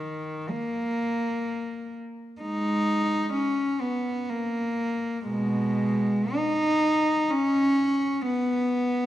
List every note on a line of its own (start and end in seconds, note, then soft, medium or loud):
0.00 0.47 D#3 medium
0.49 1.94 A#3 medium
2.41 3.29 G#3 medium
2.41 3.30 D#4 medium
3.33 3.81 C#4 medium
3.80 4.29 B3 medium
4.29 5.26 A#3 medium
5.26 6.30 B2 medium
5.26 6.32 G#3 medium
6.35 7.29 D#4 medium
7.30 8.21 C#4 medium
8.22 9.06 B3 medium